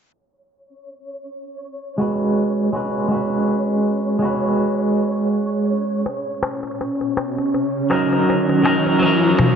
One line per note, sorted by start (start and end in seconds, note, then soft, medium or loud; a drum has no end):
0.12 9.55 C#5 medium
1.98 2.68 G#3 medium
1.98 2.69 F#4 medium
1.98 2.70 B4 medium
2.73 3.06 G#3 medium
2.73 3.07 F#4 medium
2.73 3.08 B4 medium
3.08 4.16 G#3 medium
3.08 4.18 F#4 medium
3.15 4.19 B4 medium
4.19 6.03 G#3 medium
4.19 6.05 F#4 medium
4.25 6.06 B4 medium
6.05 9.55 C#4 medium
6.05 riser medium
6.05 darbuka tek soft
6.43 darbuka tek loud
6.63 darbuka tek soft
6.81 darbuka tek soft
7.01 darbuka tek soft
7.17 darbuka tek medium
7.38 darbuka tek soft
7.54 darbuka tek soft
7.90 8.61 F#3 medium
7.90 8.61 D#4 medium
7.90 8.62 A#4 medium
7.90 darbuka tek medium
8.13 darbuka tek soft
8.30 darbuka tek soft
8.49 darbuka tek soft
8.63 8.97 F#3 medium
8.63 8.98 D#4 medium
8.63 8.99 A#4 medium
8.63 darbuka tek medium
8.86 darbuka tek soft
8.99 9.55 F#3 medium
8.99 9.55 D#4 medium
8.99 darbuka tek soft
9.06 9.55 A#4 medium
9.39 darbuka tek medium
9.39 darbuka dum medium